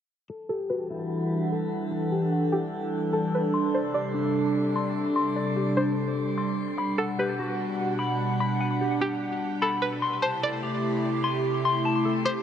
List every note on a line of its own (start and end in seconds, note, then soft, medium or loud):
0.30 3.51 E3 medium
0.30 9.99 G3 medium
0.30 6.74 D4 medium
0.30 1.51 A4 loud
0.30 6.74 A4 medium
0.30 3.51 F#5 medium
0.49 1.71 G4 medium
0.49 0.69 A4 medium
0.70 1.92 F#4 medium
0.70 1.87 B4 medium
0.90 2.12 E4 medium
1.52 1.90 A4 medium
1.91 3.12 A4 medium
2.12 3.34 G4 medium
2.32 3.53 F#5 medium
2.52 3.54 E4 medium
2.52 3.10 G4 medium
3.13 3.54 A4 medium
3.13 3.32 A4 medium
3.35 3.53 B4 medium
3.54 6.75 C3 medium
3.54 4.74 C6 loud
3.74 3.94 C5 medium
3.74 4.96 D5 medium
3.94 5.16 G4 medium
3.94 5.12 D5 medium
4.14 5.36 D4 medium
4.76 5.15 C6 medium
5.16 6.36 C6 medium
5.36 6.58 D5 medium
5.56 6.78 G4 medium
5.77 6.78 D4 medium
5.77 6.34 C5 medium
6.38 6.78 C6 medium
6.78 9.99 B2 medium
6.78 9.99 D4 medium
6.78 9.99 F#5 medium
6.78 7.98 B5 medium
6.98 7.18 A4 medium
6.98 8.20 F#5 medium
7.19 8.40 G4 medium
7.19 8.37 B4 medium
7.39 8.61 F#4 medium
7.99 8.39 B5 medium
8.40 9.61 B5 loud
8.61 9.82 F#5 medium
8.81 10.03 G4 medium
9.01 10.02 D4 medium
9.01 9.58 G4 medium
9.62 9.81 A4 medium
9.62 10.02 B5 loud
9.82 10.01 B4 medium
10.02 12.43 C3 medium
10.02 12.43 A3 medium
10.02 12.43 E4 medium
10.02 12.43 G4 loud
10.02 11.23 C6 medium
10.22 10.42 C5 medium
10.22 11.44 A5 medium
10.43 11.65 A4 medium
10.43 11.61 D5 medium
10.63 11.85 G4 medium
11.24 11.64 C6 medium
11.65 12.43 C6 loud
11.85 12.43 A5 medium
12.05 12.43 A4 medium
12.25 12.43 G4 medium
12.25 12.43 C5 medium